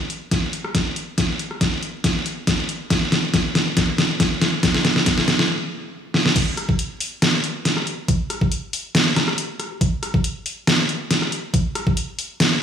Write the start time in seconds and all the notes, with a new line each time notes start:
0.10 closed hi-hat
0.31 kick, snare, closed hi-hat
0.53 closed hi-hat
0.64 cross-stick
0.75 kick, snare, closed hi-hat
0.96 closed hi-hat
1.18 kick, snare, closed hi-hat
1.39 closed hi-hat
1.51 cross-stick
1.61 kick, snare, closed hi-hat
1.83 closed hi-hat
2.04 kick, snare, closed hi-hat
2.26 closed hi-hat
2.47 kick, snare, closed hi-hat
2.69 closed hi-hat
2.90 kick, snare, closed hi-hat
3.12 snare, closed hi-hat
3.34 kick, snare, closed hi-hat
3.55 snare, closed hi-hat
3.77 kick, snare, closed hi-hat
3.98 snare, closed hi-hat
4.20 kick, snare, closed hi-hat
4.42 snare, closed hi-hat
4.63 kick, snare, closed hi-hat
4.74 snare
4.85 snare, closed hi-hat
4.96 snare
5.06 kick, snare, closed hi-hat
5.18 snare
5.28 snare, closed hi-hat
5.39 snare
6.14 snare
6.26 snare
6.36 kick, closed hi-hat, crash
6.57 cross-stick, closed hi-hat
6.69 kick
6.79 closed hi-hat
7.00 open hi-hat
7.22 cross-stick, snare, closed hi-hat
7.44 closed hi-hat
7.65 snare, closed hi-hat
7.77 cross-stick
7.87 closed hi-hat
8.08 kick, closed hi-hat
8.30 cross-stick, closed hi-hat
8.41 kick
8.52 closed hi-hat
8.73 open hi-hat
8.95 snare, closed hi-hat
9.16 cross-stick, snare, closed hi-hat
9.28 cross-stick
9.38 closed hi-hat
9.60 cross-stick, closed hi-hat
9.81 kick, closed hi-hat
10.03 cross-stick, closed hi-hat
10.14 kick
10.24 closed hi-hat
10.46 open hi-hat
10.67 cross-stick, snare, closed hi-hat
10.89 closed hi-hat
11.11 snare, closed hi-hat
11.22 cross-stick
11.32 closed hi-hat
11.54 kick, closed hi-hat
11.75 cross-stick, closed hi-hat
11.87 kick
11.97 closed hi-hat
12.19 open hi-hat
12.40 snare, closed hi-hat